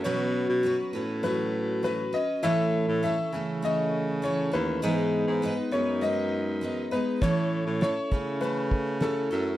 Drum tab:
SH |----------------|----------------|----------------|xx-xxx-xxx-xxxxx|
SD |----------------|----------------|----------------|---oo-------o---|
BD |----------------|----------------|----------------|o-----o---o-----|